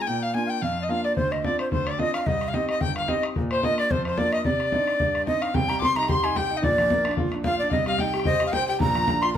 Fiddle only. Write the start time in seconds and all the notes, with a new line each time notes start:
0.02 G#5
0.07 G5
0.23 F5
0.35 G#5
0.50 G5
0.62 F5
0.83 D#5
0.90 F5
1.04 D5
1.16 C5
1.44 D5
1.59 C5
1.71 C5
1.86 D5
1.99 D#5
2.14 F5
2.27 D#5
2.49 F5
2.55 D#5
2.70 D#5
2.82 G5
2.97 F5
3.09 D#5
3.51 C5
3.64 D#5
3.79 D5
3.91 C5
4.06 C5
4.19 D5
4.34 D#5
4.46 D5
5.27 D#5
5.42 F5
5.55 G5
5.79 C6 D6
5.97 A#5
6.10 C6
6.36 G5
6.57 D#5
6.64 D5
7.45 F5
7.60 D5
7.69 D#5 F5
7.88 F5
8.00 G5
8.26 D#5
8.48 F5
8.53 G5
8.68 G5
8.80 A#5
9.23 C6